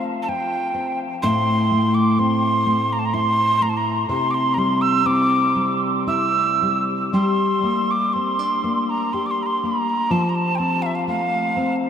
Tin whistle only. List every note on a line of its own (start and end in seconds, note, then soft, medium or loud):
0.22 0.30 A5 soft
0.29 0.99 G5 medium
1.22 1.96 C6 medium
1.94 2.21 D6 medium
2.19 2.94 C6 medium
2.93 3.01 A#5 medium
2.99 3.07 A5 medium
3.05 3.15 A#5 medium
3.14 3.64 C6 medium
3.62 3.71 A#5 medium
3.69 3.79 A5 soft
3.77 4.09 A#5 medium
4.10 4.32 C6 medium
4.31 4.56 C6 medium
4.31 4.36 D6 soft
4.54 4.60 A#5 medium
4.59 4.83 C6 medium
4.81 5.08 E6 medium
5.06 5.80 D6 medium
6.08 6.83 E6 medium
7.14 7.92 C6 medium
7.91 8.15 D6 medium
8.13 8.91 C6 medium
8.89 9.15 A#5 medium
9.13 9.28 C6 medium
9.26 9.32 D6 soft
9.31 9.44 C6 medium
9.43 9.48 A#5 soft
9.43 9.67 C6 medium
9.65 10.13 A#5 medium
10.11 10.31 A5 medium
10.29 10.37 A#5 soft
10.35 10.57 A5 medium
10.55 10.59 G5 soft
10.55 10.84 A5 medium
10.82 10.97 E5 soft
10.82 10.88 F5 medium
10.95 11.07 F5 medium
11.08 11.74 F5 medium